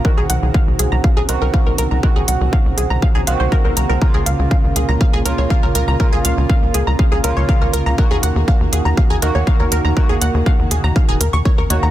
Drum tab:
HH |-x-x-x-x|-x-x-x-x|-x-x-x-x|-x-x-x-x|
BD |o-o-o-o-|o-o-o-o-|o-o-o-o-|o-o-o-o-|

HH |-x-x-x-x|-x-x-x-x|
BD |o-o-o-o-|o-o-o-o-|